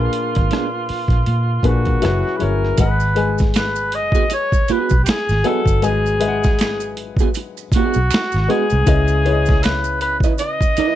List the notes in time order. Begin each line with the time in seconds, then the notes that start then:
Already playing: A#2 A#3 D4 F4 G#4 B4
0.13 closed hi-hat
0.35 G#1, kick, cross-stick, closed hi-hat
0.51 B3 D4 G#4, cross-stick, closed hi-hat
0.89 muted fingered electric bass stroke, open hi-hat
1.08 A#1, kick, closed hi-hat
1.13 cross-stick
1.26 A#2, closed hi-hat
1.63 A#1 A#2 A#3 D4 G#4 B4, kick, closed hi-hat
1.67 F#4
1.85 kick, closed hi-hat
2.01 F#1 F#3 C#4 E4 G#4 B4, cross-stick, closed hi-hat
2.28 cross-stick
2.36 F#3 C#4 E4 B4
2.40 G1 G#4 A#4 C#5, closed hi-hat
2.65 cross-stick
2.78 G#1 G#3 G#4 B4 D#5 F#5, kick, closed hi-hat, maracas
3.00 maracas
3.15 G#3 G#4 B4 D#5 G#5, closed hi-hat
3.38 kick, snare, maracas
3.54 B4, finger snap, snare, closed hi-hat, maracas
3.76 maracas
3.92 D#5, closed hi-hat
4.12 F#4 G#4, kick, maracas
4.16 B3
4.30 C#5, muted clean electric guitar stroke, closed hi-hat, maracas
4.52 kick, maracas
4.68 B3 F#4 G#4 B4, muted fingered electric bass stroke, closed hi-hat, maracas
4.89 B1, kick, maracas
5.04 G4, finger snap, muted fingered electric bass stroke, muted clean electric guitar stroke, closed hi-hat, maracas
5.09 G#4, snare
5.29 G#1, snare, maracas
5.44 F#3 B3 F#4 G#4 A4 B4 D#5 F#5 G#5, closed hi-hat
5.66 G1, kick, maracas
5.82 G#1 G#3 G#4 B4 D#5 G#5, closed hi-hat, maracas
6.06 maracas
6.20 G#3 G#4 B4 D#5 E5, closed hi-hat
6.28 F#5
6.43 kick, snare, maracas
6.59 finger snap, snare, closed hi-hat, maracas
6.80 maracas
6.97 closed hi-hat
7.17 G#4, kick, maracas
7.21 B3 F#4
7.34 muted clean electric guitar stroke, closed hi-hat, maracas
7.57 maracas
7.72 B3 F#4, muted fingered electric bass stroke, kick, closed hi-hat, maracas
7.76 F#4 G#4
7.94 B1, maracas
8.11 finger snap, muted clean electric guitar stroke, snare, closed hi-hat, maracas
8.32 G#1, maracas
8.37 snare
8.48 G#3 B3 F#4 G#4 B4 D#5 F#5, closed hi-hat
8.70 C2, maracas
8.86 C#2 C#3 C#4 E4 B4 D#5, kick, closed hi-hat, maracas
9.08 maracas
9.25 C#3 C#4 E4 B4 C#5, closed hi-hat
9.32 D#5
9.46 kick, maracas
9.50 snare
9.63 B4, finger snap, snare, closed hi-hat, maracas
9.84 maracas
10.01 B4, closed hi-hat
10.20 D#5, kick, maracas
10.25 E4 B4
10.38 D#5, muted clean electric guitar stroke, closed hi-hat, maracas
10.61 kick, maracas
10.77 E4 B4 D#5, muted fingered electric bass stroke, closed hi-hat, maracas